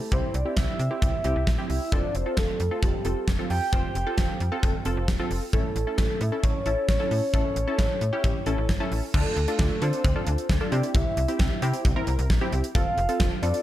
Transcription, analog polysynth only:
0.12 0.35 C4 medium
0.12 0.35 E4 medium
0.12 0.35 G4 medium
0.45 0.77 C4 medium
0.45 0.77 E4 medium
0.45 0.77 G4 medium
0.91 1.14 C4 medium
0.91 1.14 E4 medium
0.91 1.14 G4 medium
1.25 1.48 C4 medium
1.25 1.48 E4 medium
1.25 1.48 G4 loud
1.58 1.82 C4 medium
1.58 1.82 E4 medium
1.58 1.82 G4 medium
1.92 2.16 C4 medium
1.92 2.16 F4 medium
1.92 2.16 A4 medium
2.26 2.58 C4 medium
2.26 2.58 F4 medium
2.26 2.58 A4 medium
2.71 2.95 C4 medium
2.71 2.95 F4 medium
2.71 2.95 A4 medium
3.05 3.29 C4 medium
3.05 3.29 F4 medium
3.05 3.29 A4 medium
3.39 3.63 C4 medium
3.39 3.63 F4 medium
3.39 3.63 A4 medium
3.73 3.96 C4 medium
3.73 3.96 F4 medium
3.73 3.96 C5 medium
4.06 4.38 C4 medium
4.06 4.38 F4 medium
4.06 4.38 A4 loud
4.52 4.75 C4 medium
4.52 4.75 F4 medium
4.52 4.75 A4 loud
4.85 5.09 C4 medium
4.85 5.09 F4 medium
4.85 5.09 A4 loud
5.19 5.43 C4 medium
5.19 5.43 F4 medium
5.19 5.43 A4 loud
5.53 5.77 C#4 medium
5.53 5.77 E4 medium
5.53 5.77 A4 medium
5.87 6.19 C#4 medium
5.87 6.19 E4 medium
5.87 6.19 A4 medium
6.32 6.56 C#4 medium
6.32 6.56 E4 medium
6.32 6.56 A4 medium
6.66 6.90 C#4 medium
6.66 6.90 E4 medium
6.66 6.90 A4 medium
7.00 7.23 C#4 medium
7.00 7.23 E4 medium
7.00 7.23 A4 medium
7.34 7.57 C#4 medium
7.34 7.57 E4 medium
7.34 7.57 A4 medium
7.67 7.99 C#4 medium
7.67 7.99 E4 medium
7.67 7.99 A4 loud
8.13 8.36 C#4 medium
8.13 8.36 E4 medium
8.13 8.36 G4 loud
8.46 8.70 C#4 medium
8.46 8.70 E4 medium
8.46 8.70 A4 loud
8.80 9.04 C#4 medium
8.80 9.04 E4 medium
8.80 9.04 A4 loud
9.14 9.38 D4 medium
9.14 9.38 F4 medium
9.14 9.38 A4 medium
9.48 9.72 D4 medium
9.48 9.72 F4 medium
9.48 9.72 A4 medium
9.82 10.05 D4 medium
9.82 10.05 F4 medium
9.82 10.05 A4 medium
10.16 10.47 D4 medium
10.16 10.47 F4 medium
10.16 10.47 A4 medium
10.61 10.72 D4 medium
10.61 10.72 F4 medium
10.61 10.72 A4 medium
10.72 11.17 C4 medium
10.72 11.17 E4 medium
10.72 11.17 G4 medium
11.28 11.52 C4 medium
11.28 11.52 E4 medium
11.28 11.52 G4 medium
11.62 11.86 C4 loud
11.62 11.86 E4 medium
11.62 11.86 G4 loud
11.96 12.28 C4 medium
11.96 12.28 E4 medium
11.96 12.28 A#4 loud
12.41 12.65 C4 medium
12.41 12.65 E4 medium
12.41 12.65 G4 loud
12.75 12.99 C4 medium
12.75 12.99 F4 medium
12.75 12.99 A4 medium
13.09 13.32 C4 medium
13.09 13.32 F4 medium
13.09 13.32 A4 medium
13.43 13.62 C4 medium
13.43 13.62 F4 medium
13.43 13.62 A4 medium

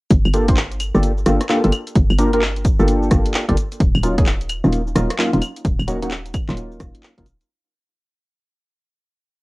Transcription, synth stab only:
0.34 0.46 A#3 medium
0.34 0.46 D4 medium
0.34 0.46 F4 medium
0.34 0.46 G4 medium
0.34 0.46 A4 loud
0.49 0.57 A#3 medium
0.49 0.57 D4 medium
0.49 0.57 F4 medium
0.49 0.57 G4 medium
0.49 0.57 C5 medium
0.95 1.12 A#3 medium
0.95 1.12 D4 medium
0.95 1.12 F4 medium
0.95 1.12 G4 medium
0.95 1.12 A4 medium
1.26 1.41 A#3 medium
1.26 1.41 D4 medium
1.26 1.41 F4 medium
1.26 1.41 G4 medium
1.26 1.41 A4 medium
1.49 1.62 A#3 loud
1.49 1.62 D4 medium
1.49 1.62 F4 medium
1.49 1.62 G4 medium
1.49 1.62 A4 loud
1.64 1.73 A#3 medium
1.64 1.73 D4 medium
1.64 1.73 F4 medium
1.64 1.73 G4 medium
1.64 1.73 A4 medium
2.18 2.31 A#3 loud
2.18 2.31 D4 medium
2.18 2.31 F4 medium
2.18 2.31 G4 medium
2.18 2.31 A#4 loud
2.33 2.42 A#3 medium
2.33 2.42 D4 medium
2.33 2.42 F4 medium
2.33 2.42 G4 medium
2.33 2.42 A#4 loud
2.79 3.45 A#3 medium
2.79 3.45 D4 medium
2.79 3.45 F4 medium
2.79 3.45 G4 medium
2.79 3.45 A4 loud
3.49 3.56 A#3 medium
3.49 3.56 D4 medium
3.49 3.56 F4 medium
3.49 3.56 G4 medium
3.49 3.56 A4 loud
4.03 4.16 F#3 medium
4.03 4.16 A#3 medium
4.03 4.16 C#4 medium
4.03 4.16 D#4 medium
4.03 4.16 F4 loud
4.18 4.27 F#3 medium
4.18 4.27 A#3 medium
4.18 4.27 C#4 medium
4.18 4.27 D#4 medium
4.18 4.27 G#4 medium
4.64 4.82 F#3 medium
4.64 4.82 A#3 medium
4.64 4.82 C#4 medium
4.64 4.82 D#4 medium
4.64 4.82 F4 medium
4.96 5.10 F#3 medium
4.96 5.10 A#3 medium
4.96 5.10 C#4 medium
4.96 5.10 D#4 medium
4.96 5.10 F4 medium
5.19 5.31 F#3 loud
5.19 5.31 A#3 medium
5.19 5.31 C#4 medium
5.19 5.31 D#4 medium
5.19 5.31 F4 loud
5.33 5.42 F#3 medium
5.33 5.42 A#3 medium
5.33 5.42 C#4 medium
5.33 5.42 D#4 medium
5.33 5.42 F4 medium
5.88 6.00 F#3 loud
5.88 6.00 A#3 medium
5.88 6.00 C#4 medium
5.88 6.00 D#4 medium
5.88 6.00 F#4 loud
6.02 6.11 F#3 medium
6.02 6.11 A#3 medium
6.02 6.11 C#4 medium
6.02 6.11 D#4 medium
6.02 6.11 F#4 loud
6.49 7.14 F#3 medium
6.49 7.14 A#3 medium
6.49 7.14 C#4 medium
6.49 7.14 D#4 medium
6.49 7.14 F4 loud
7.18 7.27 F#3 loud
7.18 7.27 A#3 medium
7.18 7.27 C#4 medium
7.18 7.27 D#4 medium
7.18 7.27 F4 loud

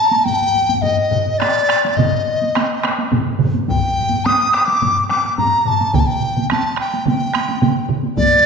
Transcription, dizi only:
0.00 0.26 A5 medium
0.24 0.83 G5 loud
0.82 1.40 D#5 medium
1.38 1.98 D5 medium
1.97 2.83 D#5 medium
3.69 4.27 G5 loud
4.25 4.56 D#6 medium
4.54 4.61 D6 medium
4.59 4.66 D#6 medium
4.65 5.09 D6 medium
5.09 5.36 D6 medium
5.38 5.61 A#5 medium
5.61 5.69 A#5 medium
5.67 5.96 A5 medium
5.94 6.01 G5 medium
5.99 6.08 A5 medium
6.06 6.50 G5 medium
6.51 6.76 A5 medium
6.80 7.05 G5 medium
7.08 7.86 G5 medium
8.17 8.46 D5 loud

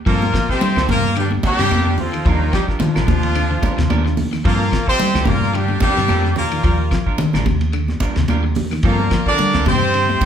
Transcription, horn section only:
0.05 0.46 A#3 medium
0.05 0.46 A#4 loud
0.49 0.86 C4 loud
0.49 0.86 C5 loud
0.89 1.14 A#3 loud
0.89 1.14 A#4 loud
1.18 1.30 G3 medium
1.18 1.30 G4 medium
1.44 1.95 G3 loud
1.44 1.95 G4 loud
1.99 2.24 F3 medium
1.99 2.24 F4 medium
2.27 2.53 D#3 medium
2.27 2.53 D#4 medium
2.53 2.65 G3 medium
2.53 2.65 G4 medium
2.81 4.14 F3 loud
2.81 4.14 F4 loud
4.46 4.85 A#3 medium
4.46 4.85 A#4 loud
4.86 5.24 C4 loud
4.86 5.24 C5 loud
5.25 5.53 A#3 medium
5.25 5.53 A#4 loud
5.54 5.80 G3 medium
5.54 5.80 G4 medium
5.81 6.32 G3 loud
5.81 6.32 G4 loud
6.37 7.15 A#3 medium
6.37 7.15 A#4 medium
8.85 9.24 A#3 medium
8.85 9.24 A#4 medium
9.27 9.64 D4 loud
9.27 9.64 D5 loud
9.67 10.25 C4 loud
9.67 10.25 C5 loud

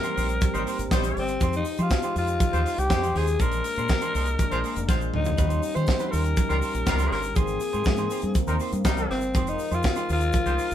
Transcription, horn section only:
0.54 0.62 G3 medium
0.54 0.62 D#4 medium
0.54 0.62 C5 medium
0.91 1.27 G3 medium
0.91 1.27 D#4 medium
0.91 1.27 C5 medium
2.52 2.60 G#3 medium
2.52 2.61 G4 medium
2.52 2.60 C5 medium
2.90 3.25 G#3 medium
2.90 3.25 G4 medium
2.90 3.25 C5 medium
4.51 4.59 G#3 medium
4.51 4.59 F4 medium
4.51 4.59 C5 medium
4.89 5.24 G#3 medium
4.89 5.24 F4 medium
4.89 5.24 C5 medium
6.50 6.58 G3 medium
6.50 6.58 F4 medium
6.50 6.58 A#4 medium
6.86 7.22 G3 medium
6.86 7.22 F4 medium
6.86 7.22 A#4 medium
8.48 8.56 G3 medium
8.48 8.56 D#4 medium
8.48 8.56 A#4 medium
8.85 9.21 G3 medium
8.85 9.20 D#4 medium
8.85 9.20 A#4 medium
10.46 10.54 G#3 medium
10.46 10.54 G4 medium
10.46 10.54 C5 medium

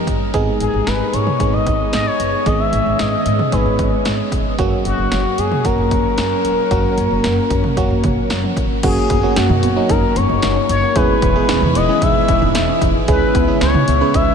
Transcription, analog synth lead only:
0.60 0.88 G#4 medium
0.87 1.15 B4 medium
1.13 1.55 C#5 loud
1.53 1.92 D#5 loud
1.93 2.08 D#5 loud
2.06 2.48 C#5 loud
2.46 2.61 D#5 loud
2.60 3.01 E5 loud
2.99 3.54 D#5 loud
3.53 4.06 B4 medium
4.85 5.40 F#4 loud
5.38 5.66 G#4 loud
5.65 8.30 A#4 loud
8.84 9.38 G#4 medium
9.37 9.91 F#4 medium
9.90 10.18 A#4 loud
10.16 10.69 C#5 loud
10.69 10.97 C#5 loud
10.96 11.77 B4 loud
11.75 12.04 D#5 loud
12.02 12.82 E5 loud
13.08 13.58 B4 medium
13.61 14.16 C#5 loud
14.14 14.35 E5 loud

